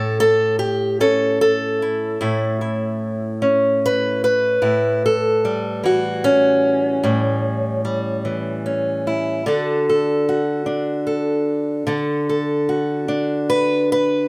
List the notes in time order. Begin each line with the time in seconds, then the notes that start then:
Already playing: A2 C#4 A4
0.20 A4
0.59 G4
1.00 C#4 A4
1.41 A4
1.82 E4
2.21 A2 E4
2.61 E4
3.42 C#4
3.86 B4
4.24 B4
4.62 A2 E4
5.06 A4
5.45 G3
5.83 E3 F#4
6.24 C#4
7.03 A2 G3
7.85 G3
8.25 E3
8.66 C#4
9.07 E4
9.46 D3 D4 F#4 A4
9.89 A4
10.29 F#4
10.66 D4
11.07 A4
11.87 D3 A4
12.29 A4
12.69 F#4
13.08 D4
13.50 B4
13.92 B4